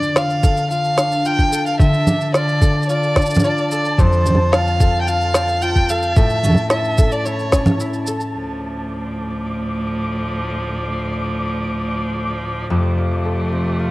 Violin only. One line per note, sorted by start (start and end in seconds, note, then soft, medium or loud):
0.00 0.19 D5 loud
0.18 0.71 F5 medium
0.71 1.28 F5 loud
1.27 1.67 G5 loud
1.67 1.79 F5 medium
1.81 2.31 E5 loud
2.36 2.86 D5 loud
2.90 3.40 D5 loud
3.44 3.69 D5 loud
3.72 4.01 D5 medium
4.00 4.54 C5 medium
4.53 5.00 F5 loud
5.01 5.09 G5 medium
5.08 5.63 F5 loud
5.62 5.91 G5 loud
5.90 6.18 F5 medium
6.16 6.70 E5 loud
6.71 7.14 E5 medium
7.12 7.27 D5 medium
7.25 7.80 C#5 medium